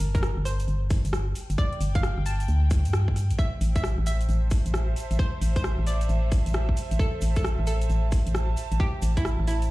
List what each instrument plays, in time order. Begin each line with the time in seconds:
Already playing: analog synth pad A5
0.00 fm bass G1, open hi-hat, shaker
0.15 synth pluck A#4, kick, closed hi-hat, shaker
0.23 cross-stick, shaker
0.37 fm bass G1, cross-stick
0.45 synth pluck C5, open hi-hat, shaker
0.60 closed hi-hat, shaker
0.68 fm bass G1, closed hi-hat, shaker
0.90 kick, open hi-hat, shaker
1.02 fm bass G1, analog synth pad G5, closed hi-hat, shaker
1.13 cross-stick, shaker
1.35 open hi-hat, shaker
1.50 fm bass G1, closed hi-hat, shaker
1.58 synth pluck D5, kick, shaker
1.73 closed hi-hat
1.81 fm bass G1, open hi-hat, shaker
1.95 synth pluck F5, kick, closed hi-hat, shaker
2.03 cross-stick, shaker
2.18 fm bass G1, cross-stick
2.26 synth pluck A5, open hi-hat, shaker
2.40 closed hi-hat, shaker
2.48 fm bass D2, closed hi-hat, shaker
2.70 kick, open hi-hat, shaker
2.85 fm bass G2, closed hi-hat, shaker
2.93 cross-stick, shaker
3.08 kick
3.16 analog synth pad C5, cross-stick, open hi-hat, shaker
3.30 fm bass A1, closed hi-hat, shaker
3.39 synth pluck E5, kick, shaker
3.61 fm bass A1, open hi-hat, shaker
3.76 synth pluck E5, kick, closed hi-hat, shaker
3.80 analog synth pad A5, cross-stick
3.84 shaker
3.89 analog synth pad E5
3.98 fm bass A1, cross-stick
4.06 synth pluck E5, open hi-hat, shaker
4.21 closed hi-hat, shaker
4.29 fm bass A1, closed hi-hat, shaker
4.51 kick, open hi-hat, shaker
4.66 fm bass A1, closed hi-hat, shaker
4.74 cross-stick, shaker
4.96 open hi-hat, shaker
5.11 fm bass A1, closed hi-hat, shaker
5.19 synth pluck C5, kick, shaker
5.42 fm bass A1, open hi-hat, shaker
5.56 synth pluck C5, kick, closed hi-hat, shaker
5.64 cross-stick, shaker
5.79 fm bass A1, cross-stick
5.87 synth pluck D5, open hi-hat, shaker
6.01 closed hi-hat, shaker
6.09 fm bass A1, closed hi-hat, shaker
6.32 kick, open hi-hat, shaker
6.46 fm bass A1, closed hi-hat, shaker
6.53 cross-stick, shaker
6.69 kick
6.77 open hi-hat, shaker
6.91 fm bass A1, closed hi-hat, shaker
6.99 synth pluck A4, kick, shaker
7.21 fm bass A1, open hi-hat, shaker
7.36 synth pluck A4, kick, closed hi-hat, shaker
7.44 cross-stick, shaker
7.59 fm bass A1, cross-stick
7.67 synth pluck A4, open hi-hat, shaker
7.81 closed hi-hat, shaker
7.90 fm bass A1, closed hi-hat, shaker
8.12 kick, open hi-hat, shaker
8.27 fm bass A1, closed hi-hat, shaker
8.35 cross-stick, shaker
8.57 open hi-hat, shaker
8.71 fm bass A1, closed hi-hat, shaker
8.80 synth pluck G4, kick, shaker
9.02 fm bass A1, open hi-hat, shaker
9.17 synth pluck E4, kick, closed hi-hat, shaker
9.25 cross-stick, shaker
9.39 fm bass A1, cross-stick
9.47 synth pluck E4, open hi-hat, shaker
9.62 closed hi-hat, shaker